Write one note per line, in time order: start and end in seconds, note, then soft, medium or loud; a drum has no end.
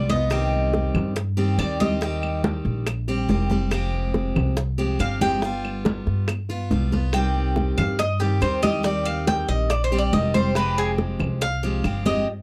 0.00 0.88 C2 medium
0.09 0.31 B3 medium
0.09 0.30 F4 medium
0.09 1.12 D#5 medium
0.09 high bongo soft
0.09 high conga medium
0.30 1.15 C3 medium
0.30 1.15 D#3 medium
0.30 1.16 G3 medium
0.30 1.16 C4 medium
0.30 1.16 G4 medium
0.30 high bongo medium
0.30 high conga soft
0.30 claves medium
0.52 high conga soft
0.74 high bongo medium
0.74 high conga medium
0.94 1.55 G2 medium
0.94 high bongo soft
0.94 high conga soft
0.94 low conga medium
0.94 claves medium
1.16 muted steel-string acoustic guitar stroke medium
1.16 high bongo medium
1.16 high conga soft
1.37 1.58 D#3 medium
1.37 1.58 G3 medium
1.37 1.58 C4 medium
1.37 1.58 G4 medium
1.37 high bongo soft
1.37 high conga soft
1.58 2.59 D#2 medium
1.58 1.79 D#3 soft
1.58 1.80 G3 soft
1.58 1.79 C4 soft
1.58 1.79 G4 soft
1.58 1.80 D5 medium
1.58 high bongo soft
1.58 low bongo medium
1.58 high conga soft
1.58 claves medium
1.80 2.00 D#3 soft
1.80 2.01 G3 medium
1.80 2.01 C4 medium
1.80 2.01 G4 medium
1.80 2.40 D#5 medium
1.80 high bongo soft
1.80 high conga medium
2.01 2.86 D#3 medium
2.01 2.86 G3 medium
2.01 2.87 C4 medium
2.01 2.87 G4 medium
2.01 high bongo medium
2.01 high conga soft
2.23 high conga soft
2.23 claves medium
2.44 high bongo medium
2.44 high conga medium
2.65 3.25 A#1 medium
2.65 high bongo soft
2.65 high conga soft
2.87 muted steel-string acoustic guitar stroke medium
2.87 high bongo medium
2.87 high conga soft
2.87 claves medium
3.08 3.28 G3 medium
3.08 3.29 C4 medium
3.08 3.29 G4 medium
3.08 high bongo soft
3.08 high conga soft
3.29 4.30 F1 medium
3.29 3.50 D#3 soft
3.29 3.50 G3 soft
3.29 3.50 C4 soft
3.29 3.48 G4 medium
3.29 high bongo soft
3.29 low bongo medium
3.29 high conga medium
3.50 3.72 G3 medium
3.50 3.71 C4 medium
3.50 3.71 G4 medium
3.50 high bongo soft
3.50 high conga medium
3.71 4.55 C3 medium
3.71 4.57 F3 medium
3.71 4.56 G#3 medium
3.71 4.56 C4 medium
3.71 4.57 G4 medium
3.71 high bongo medium
3.71 high conga soft
3.71 claves medium
3.94 high conga soft
4.14 high bongo medium
4.14 high conga medium
4.36 4.96 C2 medium
4.36 high bongo soft
4.36 high conga soft
4.36 low conga medium
4.36 claves medium
4.57 muted steel-string acoustic guitar stroke medium
4.57 high bongo medium
4.57 high conga soft
4.78 4.98 F3 medium
4.78 4.98 G#3 medium
4.78 4.99 C4 medium
4.78 4.99 G4 medium
4.78 high bongo soft
4.78 high conga soft
4.99 6.01 G1 medium
4.99 5.20 F3 soft
4.99 5.21 G#3 soft
4.99 5.21 C4 soft
4.99 5.20 G4 soft
4.99 5.21 F5 medium
4.99 high bongo soft
4.99 low bongo medium
4.99 high conga soft
4.99 claves medium
5.21 5.43 F3 medium
5.21 5.42 G#3 medium
5.21 5.42 C4 medium
5.21 5.42 G4 medium
5.21 5.82 G5 loud
5.21 high bongo soft
5.21 high conga medium
5.42 6.28 G3 medium
5.42 6.28 B3 medium
5.42 6.28 F4 medium
5.42 high bongo medium
5.42 high conga soft
5.65 high conga soft
5.65 claves medium
5.85 high bongo medium
5.85 high conga loud
6.07 6.67 G2 medium
6.07 high bongo soft
6.07 high conga soft
6.28 muted steel-string acoustic guitar stroke medium
6.28 high bongo medium
6.28 high conga soft
6.28 claves medium
6.49 6.70 B3 medium
6.49 6.70 F4 medium
6.49 high bongo soft
6.49 high conga soft
6.71 7.72 C2 medium
6.71 6.92 G3 medium
6.71 6.92 B3 soft
6.71 6.91 F4 medium
6.71 high bongo soft
6.71 low bongo medium
6.71 high conga medium
6.92 7.14 B3 medium
6.92 7.13 F4 medium
6.92 high bongo soft
6.92 high conga medium
7.13 7.98 C3 medium
7.13 7.98 D#3 medium
7.13 7.99 G3 medium
7.13 7.99 C4 medium
7.13 7.99 G4 medium
7.13 7.74 G5 medium
7.13 high bongo medium
7.13 high conga soft
7.13 claves medium
7.36 high conga soft
7.56 high bongo medium
7.56 high conga medium
7.78 8.38 G2 medium
7.78 7.99 F5 medium
7.78 high bongo soft
7.78 high conga soft
7.78 low conga medium
7.78 claves medium
7.99 8.20 D#5 medium
7.99 muted steel-string acoustic guitar stroke medium
7.99 high bongo medium
7.99 high conga soft
8.20 8.40 D#3 medium
8.20 8.40 G3 medium
8.20 8.41 C4 medium
8.20 8.41 G4 medium
8.20 high bongo soft
8.20 high conga soft
8.41 9.43 D#2 medium
8.41 8.62 D#3 soft
8.41 8.62 G3 medium
8.41 8.62 C4 soft
8.41 8.61 G4 medium
8.41 8.62 C5 medium
8.41 high bongo soft
8.41 low bongo medium
8.41 high conga soft
8.41 claves medium
8.62 8.82 D#3 soft
8.62 8.83 G3 medium
8.62 8.84 C4 medium
8.62 8.84 G4 medium
8.62 8.84 D#5 loud
8.62 high bongo soft
8.62 high conga medium
8.83 9.69 D#3 medium
8.83 9.70 G3 medium
8.83 9.71 C4 medium
8.83 9.71 G4 medium
8.83 9.05 D5 medium
8.83 high bongo medium
8.83 high conga soft
9.05 9.27 F5 medium
9.05 high conga soft
9.05 claves medium
9.27 9.48 G5 loud
9.27 high bongo medium
9.27 high conga medium
9.49 10.09 A#1 medium
9.49 9.70 D#5 medium
9.49 high bongo soft
9.49 high conga soft
9.70 9.84 D5 medium
9.70 muted steel-string acoustic guitar stroke medium
9.70 high bongo medium
9.70 high conga soft
9.70 claves medium
9.84 9.98 C5 medium
9.91 10.12 G3 medium
9.91 10.13 C4 medium
9.91 10.13 G4 medium
9.91 high bongo soft
9.91 high conga soft
9.99 10.13 D5 medium
10.13 11.14 F1 medium
10.13 10.34 D#3 soft
10.13 10.34 G3 soft
10.13 10.34 C4 soft
10.13 10.34 G4 medium
10.13 10.34 D#5 medium
10.13 high bongo soft
10.13 low bongo medium
10.13 high conga medium
10.34 10.56 G3 medium
10.34 10.56 C4 medium
10.34 10.55 G4 medium
10.34 10.55 C5 medium
10.34 high bongo soft
10.34 high conga medium
10.55 11.40 C3 medium
10.55 11.41 F3 medium
10.55 11.40 G#3 medium
10.55 11.41 C4 medium
10.55 11.42 G4 medium
10.55 10.77 B4 medium
10.55 high bongo medium
10.55 high conga soft
10.55 claves medium
10.77 10.91 G#4 loud
10.77 high conga soft
10.98 high bongo medium
10.98 high conga medium
11.19 11.80 C2 medium
11.19 high bongo soft
11.19 high conga soft
11.19 low conga medium
11.19 claves medium
11.41 12.02 F5 medium
11.41 muted steel-string acoustic guitar stroke medium
11.41 high bongo medium
11.41 high conga soft
11.63 11.83 F3 medium
11.63 11.84 G#3 medium
11.63 11.84 C4 medium
11.63 11.84 G4 medium
11.63 high bongo soft
11.63 high conga soft
11.84 12.24 G1 medium
11.84 12.05 F3 medium
11.84 12.05 G#3 medium
11.84 12.05 C4 soft
11.84 12.04 G4 medium
11.84 high bongo soft
11.84 low bongo medium
11.84 high conga soft
11.84 claves medium
12.05 12.27 F3 medium
12.05 12.27 G#3 medium
12.05 12.27 C4 medium
12.05 12.26 G4 medium
12.05 12.27 D#5 medium
12.05 high bongo soft
12.05 high conga medium